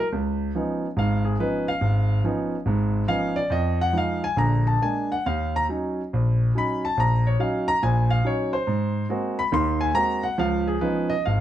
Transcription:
0.13 C#2
0.55 F3 B3 C#4 D#4
0.97 G#1 G#2 F5
1.24 G#4
1.39 F3 B3 C#4 D#4 B4
1.68 F5
1.81 G#1
2.24 F3 B3 C#4 D#4
2.66 G#1 G#2
3.08 F3 B3 C#4 D#4 F5
3.36 D5
3.50 F2 D#5
3.81 F#5
3.93 F3 G#3 D#4
3.98 F5
4.24 G#5
4.36 A#1 D3 A#5
4.67 A5
4.82 G#3 A#3 D4 G#5
5.12 F#5
5.26 D#2 F5
5.56 A#5
5.69 F#3 C#4 D#4
6.13 A#1
6.55 F#3 C#4 D#4 B5
6.85 A5
6.97 A#1 A#5
7.27 C#5
7.39 F#3 C#4 D#4 F5
7.68 A#5
7.83 A#1 A#2 G#5
8.10 F5
8.25 F#3 C#4 D#4 C#5
8.53 C5
8.67 G#2
9.09 G#3 A#3 C4 F#4
9.39 B5
9.52 D#2 D#3 C6
9.81 G#5
9.94 G#3 A#3 C4 F#4 A#5
10.23 F#5
10.38 C#2 F3 F5
10.68 G#4
10.81 F3 B3 C#4 D#4 B4
11.10 D#5
11.25 G#1 F5

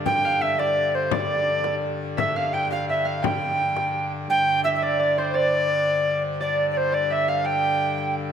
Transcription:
Already playing: D5 F5
0.06 G2 D3 G5, frame drum
0.25 F5
0.41 E5, frame drum
0.59 D5, frame drum
0.77 frame drum
0.95 C5
1.11 D5, frame drum
1.47 frame drum
1.64 frame drum
1.82 frame drum
2.17 E5, frame drum
2.36 F5
2.53 G5, frame drum
2.71 F5, frame drum
2.89 E5, frame drum
3.05 F5
3.22 G5, frame drum
3.42 frame drum
3.59 frame drum
3.77 frame drum
4.29 G2 D3 G5
4.64 E5
4.75 E5
4.82 D5
5.00 D5
5.18 C5
5.34 D5
6.41 D5
6.71 D5
6.77 C5
6.92 D5
7.10 E5
7.28 F5
7.44 G5
7.98 G5

